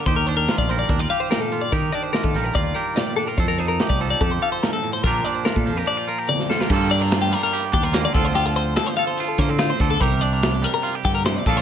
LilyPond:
<<
  \new Staff \with { instrumentName = "Clean electric guitar" } { \time 4/4 \key ees \lydian \tempo 4 = 145 c''16 bes'16 c''16 bes'8 d''16 c''16 d''16 bes'16 d''16 f''16 c''16 bes'16 a'8 d''16 | bes'8 d''16 c''16 bes'16 a'8 bes'16 d''8 bes'8 d''8 a'16 bes'16 | c''16 bes'16 c''16 bes'8 d''16 c''16 d''16 a'16 c''16 f''16 c''16 bes'16 a'8 c''16 | bes'8 d''16 c''16 bes'16 a'8 bes'16 d''8 bes'8 d''8 a'16 bes'16 |
a'8 d''16 bes'8 g'16 bes'16 bes'8 r16 g'16 bes'16 c''16 d''16 a'16 c''16 | g'16 a'16 c''8 a'16 c''16 f''16 c''8 a'16 c''16 a'16 f'16 c''8 a'16 | bes'8 d''16 bes'8 g'16 bes'16 bes'8 r16 g'16 bes'16 c''16 d''16 a'16 c''16 | }
  \new Staff \with { instrumentName = "Clean electric guitar" } { \time 4/4 \key ees \lydian << { <bes d' g'>8 d'8 f'8 bes'8 d'16 f'16 g'4 f'8 | g'8 d'8 f'8 bes'8 f'8 g'4 d'16 f'16 | a'8 ees'8 g'8 a'8 g'8 a'4. | <f d' f' g'>8 d'8 f'8 f'16 g'16 d'16 f'16 f'16 g'8. f'8 |
<g bes f' a'>8 d'16 f'4~ f'16 g'8 d'16 f'16 bes8 <f c' f' a'>8 | f'4. a'8 f'8 bes16 c'16 c''8 a'8 | g'8 d'4. f'16 g'4~ g'16 <f d' f' a'>8 | } \\ { ees4. g4. bes,4 | ees4. g4. bes,4 | f,4. f4. g,8 a,8 | bes,4. f4. f,4 |
g,4. g4. d8 d8~ | d4 f4. a,4 d8 | c4. g4 d8 c8 bes,8 | } >> }
  \new Staff \with { instrumentName = "Fingered electric bass" } { \clef bass \time 4/4 \key ees \lydian ees,4~ ees,16 bes,,8. ees,8 r4. | ees8 r8. ees16 bes,,8 ees,8 r4. | f,4~ f,16 c,8. f,8 r4. | bes,,8 r8. bes,16 f,8 r2 |
g,2 r8 ees,4 d,8~ | d,4. r4 d4 d,8 | c,2 r8 g,4 bes,,8 | }
  \new DrumStaff \with { instrumentName = "Drums" } \drummode { \time 4/4 <hh bd>8 hh8 <hh sn>16 bd16 hh8 <hh bd>8 hh8 <hh sn>8 hh8 | <hh bd>8 hh8 <hh sn>16 bd16 hh8 <hh bd>8 hh8 <hh sn>8 hh8 | <hh bd>8 hh8 <hh sn>16 bd16 hh8 <hh bd>8 hh8 <hh sn>8 hh8 | <hh bd>8 hh8 <hh sn>16 bd16 hh8 r4 tommh16 sn16 sn16 sn16 |
<cymc bd>8 hh8 <hh sn>8 hh8 hh8 <hh bd>8 <hh sn>8 <hh bd sn>8 | hh8 hh8 <hh sn>8 hh8 hh8 <hh bd>8 <hh sn>8 <hh bd sn>8 | <hh bd>8 hh8 <hh sn>8 hh8 hh8 <hh bd>8 <hh sn>8 <hh bd sn>8 | }
>>